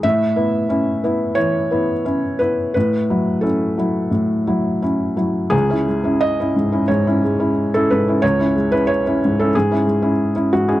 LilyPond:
\new Staff \with { instrumentName = "Felt piano" } { \time 4/4 \key cis \minor \tempo 4 = 89 << { e''2 cis''4. b'8 | b'4 a'2 r4 | gis'4 dis''4 cis''4~ cis''16 a'16 b'8 | cis''8. b'16 cis''8. a'16 gis'4. fis'16 gis'16 | } \\ { a,8 <b e'>8 <cis' e'>8 <b e'>8 e8 <b e'>8 <cis' e'>8 <b e'>8 | a,8 <fis e'>8 <cis' e'>8 <fis e'>8 a,8 <fis e'>8 <cis' e'>8 <fis e'>8 | cis,16 <cis' e'>16 gis16 <cis' e'>8 <cis' e'>16 gis,16 <cis' e'>16 gis,16 <cis' e'>16 gis16 <cis' e'>8 <cis' e'>16 gis,16 <cis' e'>16 | cis,16 <cis' e'>16 gis16 <cis' e'>8 <cis' e'>16 gis,16 <cis' e'>16 gis,16 <cis' e'>16 gis16 <cis' e'>8 <cis' e'>16 gis,16 <cis' e'>16 | } >> }